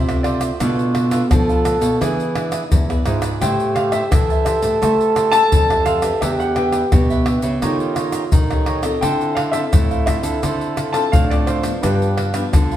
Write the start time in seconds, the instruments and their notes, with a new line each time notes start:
Already playing: nylon-string guitar C3, trombone F4, grand piano E5
0.08 nylon-string guitar A3 C4, cavaquinho A4 C5 E5, pandeiro, tamborim, shaker
0.23 cavaquinho F4 A4 C5 E5, grand piano D5, pandeiro, tamborim
0.41 cavaquinho A4 C5 E5, pandeiro, tamborim, shaker
0.60 nylon-string guitar B2 A3 D4 F4, cavaquinho D4 A4 B4 F5, trombone F4, pandeiro, tamborim, shaker, surdo
0.79 pandeiro, shaker
0.95 cavaquinho D4 A4 B4 F5, pandeiro, tamborim
1.11 nylon-string guitar A3 D4 F4, cavaquinho D4 A4 B4 F5, pandeiro, tamborim, shaker
1.31 nylon-string guitar B2 F3 A3 D4 F4, trombone A4, pandeiro, tamborim, shaker, surdo
1.49 cavaquinho A4 B4 F5, pandeiro, shaker
1.65 nylon-string guitar A3 D4 F4, cavaquinho D4 A4 B4 F5, pandeiro, tamborim, shaker
1.81 nylon-string guitar B2, cavaquinho A4 B4 F5, pandeiro, shaker
2.01 nylon-string guitar E3 B3 D4 G#4, cavaquinho E4 G#4 B4 D5, trombone G#4, pandeiro, tamborim, shaker, surdo
2.20 pandeiro, shaker
2.35 nylon-string guitar B3 D4 G#4, cavaquinho E4 G#4 B4 D5, pandeiro, tamborim
2.52 cavaquinho E4 G#4 B4 D5, pandeiro, tamborim, shaker
2.65 trombone D#4
2.71 nylon-string guitar E2 B2, trombone E4, pandeiro, shaker, surdo
2.89 nylon-string guitar B3 D4 G#4, cavaquinho G#4 B4 D5, pandeiro, tamborim, shaker
3.05 nylon-string guitar G#2, cavaquinho E4 G#4 B4 D5, trombone F4, pandeiro, tamborim, shaker
3.22 cavaquinho G#4 B4 D5, pandeiro, tamborim, shaker
3.41 nylon-string guitar A2 A3 E4 G4 C5, cavaquinho G4 C5 E5 A5, trombone G4, grand piano G5, pandeiro, tamborim, shaker, surdo
3.60 pandeiro, shaker
3.75 cavaquinho G4 C5 E5 A5, grand piano F5, pandeiro, tamborim
3.92 nylon-string guitar E4 G4 C5, cavaquinho G4 C5 E5 A5, grand piano E5, pandeiro, tamborim, shaker
4.12 nylon-string guitar E3 E4 G4 C5, trombone A4, pandeiro, tamborim, shaker, surdo
4.30 cavaquinho C5 E5 A5, pandeiro, shaker
4.45 nylon-string guitar E4 G4 C5, cavaquinho G4 C5 E5 A5, grand piano E5, pandeiro, tamborim, shaker
4.62 nylon-string guitar A2, cavaquinho C5 E5 A5, pandeiro, shaker
4.82 nylon-string guitar A3, cavaquinho G4 C5 E5 A5, pandeiro, tamborim, shaker, surdo
5.01 pandeiro, shaker
5.16 nylon-string guitar E4 G4 C5, cavaquinho G4 C5 E5 A5, pandeiro, tamborim, shaker
5.32 cavaquinho G4 C5 E5 A5, grand piano A5, pandeiro, tamborim, shaker
5.52 nylon-string guitar F2 E3, pandeiro, shaker, surdo
5.70 nylon-string guitar E4 G4 C5, cavaquinho C5 E5 A5, pandeiro, tamborim, shaker
5.85 cavaquinho G4 C5 E5 A5, grand piano F5, pandeiro, tamborim, shaker
6.02 nylon-string guitar D4 G4 B4, cavaquinho C5 E5 A5, pandeiro, tamborim, shaker
6.21 nylon-string guitar E2 E3, cavaquinho D4 G4 B4 E5, trombone G4, grand piano E5, pandeiro, tamborim, shaker, surdo
6.40 grand piano F#5, pandeiro, shaker
6.56 cavaquinho D4 G4 B4 E5, nylon-string guitar D4 G4 B4, grand piano G5, pandeiro, tamborim
6.72 cavaquinho D4 G4 B4 E5, pandeiro, tamborim, shaker
6.92 nylon-string guitar B2 D4 G4 B4, pandeiro, tamborim, shaker, surdo
7.10 cavaquinho G4 B4 E5, pandeiro, shaker
7.26 cavaquinho D4 G4 B4 E5, nylon-string guitar D4 G4 B4, pandeiro, tamborim
7.42 nylon-string guitar C#3, cavaquinho G4 B4 E5, pandeiro, shaker
7.62 nylon-string guitar D#3 C#4 G4 A4, cavaquinho D#4 G4 C#5 D#5, trombone F4, pandeiro, tamborim, shaker, surdo
7.80 pandeiro, shaker
7.96 nylon-string guitar C#4 G4 A4, cavaquinho D#4 G4 C#5 D#5, pandeiro, tamborim, shaker
8.12 cavaquinho D#4 G4 C#5 D#5, pandeiro, tamborim, shaker
8.32 nylon-string guitar A#2 D#3, trombone D#4, pandeiro, shaker, surdo
8.50 nylon-string guitar C#4 G4 A4, cavaquinho G4 C#5 D#5, pandeiro, tamborim, shaker
8.66 cavaquinho D#4 G4 C#5 D#5, pandeiro, tamborim
8.82 nylon-string guitar C4 F4 A4, cavaquinho G4 C#5 D#5, pandeiro, tamborim, shaker
9.01 nylon-string guitar D3, cavaquinho D4 A4 C5, trombone E4, grand piano G5, pandeiro, tamborim, shaker, surdo
9.21 pandeiro, shaker
9.35 cavaquinho D4 A4 C5 F5, grand piano F5, pandeiro, tamborim
9.52 nylon-string guitar C4 A4, cavaquinho D4 A4 C5 F5, grand piano E5, pandeiro, tamborim, shaker
9.73 nylon-string guitar A2, pandeiro, tamborim, shaker, surdo
9.91 cavaquinho A4 C5 F5, pandeiro, shaker
10.06 nylon-string guitar C4 F4 A4, cavaquinho D4 A4 C5 F5, grand piano E5, pandeiro, tamborim, shaker, surdo
10.23 nylon-string guitar D3, cavaquinho A4 C5 F5, pandeiro, shaker
10.43 nylon-string guitar D3 C4 A4, cavaquinho D4 A4 C5, pandeiro, tamborim, shaker, surdo
10.61 pandeiro, shaker
10.76 cavaquinho D4 A4 C5 F5, pandeiro, tamborim, shaker
10.93 nylon-string guitar C4 F4 A4, cavaquinho D4 A4 C5 F5, grand piano A5, pandeiro, tamborim, shaker
11.12 nylon-string guitar A2, trombone D4, grand piano F5, pandeiro, shaker, surdo
11.30 nylon-string guitar C4 F4 A4, cavaquinho A4 C5 F5, grand piano D5, pandeiro, tamborim, shaker
11.46 cavaquinho D4 A4 C5 F5, grand piano C5, pandeiro, tamborim, shaker
11.63 nylon-string guitar F3 B3 D4, cavaquinho A4 C5 F5, pandeiro, tamborim, shaker
11.82 nylon-string guitar G2, cavaquinho D4 G4 B4 F5, trombone G4, grand piano B4, pandeiro, tamborim, shaker, surdo
12.02 pandeiro, shaker
12.17 cavaquinho D4 G4 B4 F5, pandeiro, tamborim
12.34 nylon-string guitar F3 B3 D4, cavaquinho D4 G4 B4 F5, pandeiro, tamborim, shaker
12.53 nylon-string guitar D3, trombone F4, pandeiro, tamborim, shaker, surdo
12.71 cavaquinho B4 F5, pandeiro, shaker